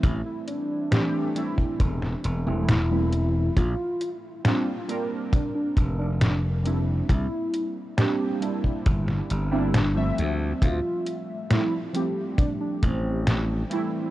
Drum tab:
HH |x-x-x-x-x-x-x-x-|x-x-x-x-x-x-x-x-|x-x-x-x-x-x-x-x-|x-x-x-x-x-x-x-x-|
SD |----o----o--o---|----o-------o---|----o----o--o---|----o-------o---|
BD |o------oo-------|o-------o-o-----|o------oo-------|o-------o-o-----|